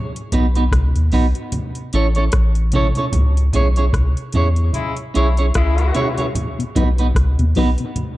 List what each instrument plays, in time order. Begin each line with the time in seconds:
0.16 closed hi-hat
0.32 sub bass B1, clean electric guitar B3 D#4 F#4 B4, closed hi-hat, low conga
0.55 clean electric guitar B3 D#4 F#4 B4, closed hi-hat
0.72 sub bass C#2, kick, cross-stick, closed hi-hat, high conga
0.95 sub bass D#2, closed hi-hat
1.12 sub bass B1, clean electric guitar B3 D#4 F#4 B4, open hi-hat, low conga
1.35 closed hi-hat
1.52 closed hi-hat, high conga, low conga
1.75 closed hi-hat
1.93 sub bass A1, clean electric guitar C#4 E4 A4 C#5, closed hi-hat
2.15 clean electric guitar C#4 E4 A4 C#5, closed hi-hat
2.32 sub bass A1, kick, cross-stick, closed hi-hat
2.55 closed hi-hat
2.72 clean electric guitar C#4 E4 A4, closed hi-hat, high conga
2.76 clean electric guitar C#5
2.95 clean electric guitar C#4 E4 A4 C#5, closed hi-hat, high conga
3.12 sub bass C#2, closed hi-hat, low conga
3.37 closed hi-hat
3.53 sub bass B1, clean electric guitar C#4 E4 G#4 C#5, closed hi-hat, low conga
3.76 clean electric guitar C#4 E4 G#4 C#5, closed hi-hat
3.93 sub bass C#2, kick, cross-stick, closed hi-hat, high conga
4.17 closed hi-hat
4.33 sub bass E2, clean electric guitar C#4 E4 G#4, closed hi-hat, low conga
4.37 clean electric guitar C#5
4.56 closed hi-hat
4.73 horn section C#3 G#3 E4, closed hi-hat, high conga, low conga
4.97 closed hi-hat
5.14 sub bass B1, horn section C#3 G#3 E4, clean electric guitar C#4 E4 G#4 C#5, closed hi-hat
5.37 clean electric guitar C#4 E4 G#4 C#5, closed hi-hat
5.54 sub bass C#2, horn section C#3 G#3 E4, kick, cross-stick, closed hi-hat
5.78 closed hi-hat
5.95 clean electric guitar C#4 E4 G#4 C#5, closed hi-hat, high conga
6.18 clean electric guitar C#4 E4 G#4 C#5, closed hi-hat, high conga
6.35 closed hi-hat, low conga
6.59 tonewheel organ B2, closed hi-hat
6.75 sub bass B1, tonewheel organ F#3 B3 D#4, clean electric guitar B3 D#4 F#4 B4, closed hi-hat, low conga
6.98 clean electric guitar B3 D#4 F#4 B4, closed hi-hat
7.15 sub bass C#2, kick, cross-stick, closed hi-hat, high conga
7.38 sub bass D#2, tonewheel organ B2, closed hi-hat
7.55 sub bass B1, tonewheel organ F#3 B3 D#4, clean electric guitar B3 D#4 F#4 B4, open hi-hat, low conga
7.78 tonewheel organ B2, closed hi-hat
7.96 closed hi-hat, high conga, low conga